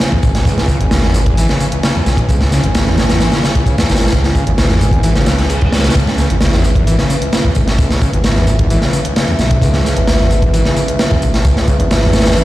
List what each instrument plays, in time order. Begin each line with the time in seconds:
Already playing: analog synth pad C#4 B4 G#5
0.00 acid bass C#3, snare, closed hi-hat
0.12 acid bass E2, kick, closed hi-hat
0.23 detuned saw bass G#1, acid bass C#2, kick, closed hi-hat
0.35 acid bass B1, snare, closed hi-hat
0.45 detuned saw bass C#2, acid bass C#2, kick, closed hi-hat
0.58 acid bass C#2, snare, closed hi-hat
0.68 acid bass C#3, kick, closed hi-hat
0.80 detuned saw bass G#1, acid bass E2, closed hi-hat
0.91 acid bass C#2, snare, closed hi-hat
1.03 acid bass E2, snare, closed hi-hat
1.14 acid bass C#3, closed hi-hat
1.26 acid bass E2, kick, closed hi-hat
1.37 acid bass E3, closed hi-hat
1.49 acid bass C#3, snare, closed hi-hat
1.60 acid bass C#3, closed hi-hat
1.72 acid bass C#2, closed hi-hat
1.83 acid bass C#3, snare, closed hi-hat
1.95 acid bass E2, closed hi-hat
2.06 detuned saw bass B1, acid bass C#2, snare, closed hi-hat
2.17 acid bass B1, kick, closed hi-hat
2.29 detuned saw bass C#2, acid bass C#2, kick, closed hi-hat
2.40 acid bass C#2, snare, closed hi-hat
2.52 acid bass C#3, snare, closed hi-hat
2.64 detuned saw bass G#1, acid bass E2, closed hi-hat
2.75 acid bass C#2, snare, closed hi-hat
2.86 acid bass E2, snare, closed hi-hat
2.98 acid bass C#3, snare, closed hi-hat
3.09 acid bass E2, snare, closed hi-hat
3.20 acid bass E3, snare, closed hi-hat
3.32 acid bass C#3, snare, closed hi-hat
3.43 acid bass C#3, snare, closed hi-hat
3.55 acid bass C#2, kick, closed hi-hat
3.66 acid bass C#3, kick, closed hi-hat
3.78 acid bass E2, snare, closed hi-hat
3.89 detuned saw bass G#1, acid bass C#2, snare, closed hi-hat
3.95 snare, closed hi-hat
4.01 acid bass B1, snare, closed hi-hat
4.07 snare, closed hi-hat
4.12 detuned saw bass C#2, acid bass C#2, kick, closed hi-hat
4.24 acid bass C#2, snare, closed hi-hat
4.35 acid bass C#3, kick, closed hi-hat
4.47 detuned saw bass G#1, acid bass E2, closed hi-hat
4.58 acid bass C#2, snare, closed hi-hat
4.70 acid bass E2, snare, closed hi-hat
4.81 acid bass C#3, closed hi-hat
4.91 acid bass E2, kick, closed hi-hat
5.03 acid bass E3, closed hi-hat, reverse cymbal
5.15 acid bass C#3, snare, closed hi-hat
5.26 detuned saw bass C#2, acid bass C#3, snare, closed hi-hat
5.38 acid bass C#2, snare, closed hi-hat
5.50 acid bass C#3, closed hi-hat
5.61 acid bass E2, kick, closed hi-hat
5.72 acid bass C#2, snare, closed hi-hat
5.77 snare, closed hi-hat
5.84 acid bass B1, snare, closed hi-hat
5.89 snare, closed hi-hat
5.95 acid bass C#2, detuned saw bass C#2, analog synth pad E5, kick, closed hi-hat
6.07 acid bass C#2, snare, closed hi-hat
6.18 acid bass C#3, snare, closed hi-hat
6.30 detuned saw bass G#1, acid bass E2, closed hi-hat
6.41 acid bass C#2, snare, closed hi-hat
6.53 acid bass E2, snare, closed hi-hat
6.64 acid bass B2, closed hi-hat
6.75 acid bass E2, kick, closed hi-hat
6.87 acid bass E3, closed hi-hat
6.98 acid bass C#3, snare, closed hi-hat
7.10 acid bass C#3, closed hi-hat
7.21 acid bass C#2, closed hi-hat
7.33 acid bass C#3, snare, closed hi-hat
7.44 acid bass E2, kick, closed hi-hat
7.55 detuned saw bass G#1, acid bass C#2, kick, closed hi-hat
7.67 acid bass B1, snare, closed hi-hat
7.78 acid bass C#2, detuned saw bass C#2, kick, closed hi-hat
7.90 acid bass C#2, snare, closed hi-hat
8.02 acid bass C#3, kick, closed hi-hat
8.13 detuned saw bass G#1, acid bass E2, closed hi-hat
8.24 acid bass C#2, snare, closed hi-hat
8.36 acid bass E2, snare, closed hi-hat
8.47 acid bass B2, closed hi-hat
8.59 acid bass E2, kick, closed hi-hat
8.70 acid bass E3, closed hi-hat
8.82 acid bass C#3, snare, closed hi-hat
8.93 acid bass C#3, closed hi-hat
9.05 acid bass C#2, closed hi-hat
9.16 acid bass C#3, snare, closed hi-hat
9.28 acid bass E2, closed hi-hat
9.39 detuned saw bass B1, acid bass C#2, snare, closed hi-hat
9.51 acid bass B1, kick, closed hi-hat
9.62 detuned saw bass C#2, acid bass C#2, kick, closed hi-hat
9.73 acid bass C#2, snare, closed hi-hat
9.85 acid bass C#3, snare, closed hi-hat
9.96 detuned saw bass G#1, acid bass E2, closed hi-hat
10.08 acid bass C#2, snare, closed hi-hat
10.19 acid bass E2, snare, closed hi-hat
10.31 acid bass B2, closed hi-hat
10.42 acid bass E2, kick, closed hi-hat
10.53 acid bass E3, closed hi-hat
10.65 acid bass C#3, snare, closed hi-hat
10.76 acid bass C#3, closed hi-hat
10.88 acid bass C#2, closed hi-hat
10.99 acid bass C#3, snare, closed hi-hat
11.11 acid bass E2, kick, closed hi-hat
11.22 detuned saw bass G#1, acid bass C#2, kick, closed hi-hat
11.34 acid bass B1, snare, closed hi-hat
11.44 acid bass C#2, detuned saw bass C#2, kick, closed hi-hat
11.56 acid bass C#2, snare, closed hi-hat
11.68 acid bass C#3, kick, closed hi-hat
11.79 detuned saw bass G#1, acid bass E2, closed hi-hat
11.91 acid bass C#2, snare, closed hi-hat
12.02 acid bass E2, snare, closed hi-hat
12.13 acid bass B2, snare, closed hi-hat
12.19 snare, closed hi-hat
12.25 acid bass E2, snare, closed hi-hat
12.31 snare, closed hi-hat
12.37 acid bass E3, closed hi-hat